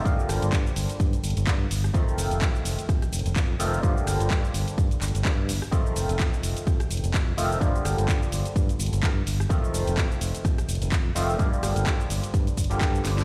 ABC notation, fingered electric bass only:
X:1
M:4/4
L:1/16
Q:"Swing 16ths" 1/4=127
K:Gm
V:1 name="Fingered electric bass" clef=bass
G,, z G,,, G,,, G,, z G,,, z G,, z G,,, G,,, G,, z G,,, z | F,, z F,,, F,,, F,, z F,,, z F,, z F,,, F,,, F,, z F,,, z | G,, z G,,, G,,, G,, z G,,, z G,, z G,,, G,,, G,,2 G,,, z | F,, z F,,, F,,, F,, z F,,, z F,, z F,,, F,,, F,, z F,,, z |
G,, z G,,, G,,, G,, z G,,, z G,, z G,,, G,,, G,, z G,,, z | F,, z F,,, F,,, F,, z F,,, z F,, z F,,, F,,, F,, z F,,, z | G,, z G,,, G,,, G,, z G,,, z G,, z G,,, G,,, G,, z G,,, z |]